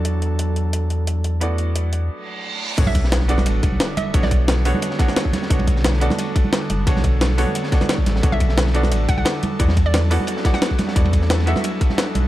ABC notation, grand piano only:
X:1
M:4/4
L:1/8
Q:1/4=176
K:Bm
V:1 name="Grand piano"
[B,EFAd]8 | [B,EFAd]8 | [B,DFAc]3 [B,DFAd]4- [B,DFAd] | [B,DFAc] z2 [B,DFAc]2 [B,DFAc]3 |
[B,DFAc]3 [B,DFAd]4- [B,DFAd] | [B,DFAc] z2 [B,DFAc]2 [B,DFAd]3 | [B,DFAc]3 [B,DFAd]4- [B,DFAd] | [B,EFAd] z2 [B,EFAd]2 [B,EFAd]3 |
[B,EFAd]3 [B,EFAe]4- [B,EFAe] |]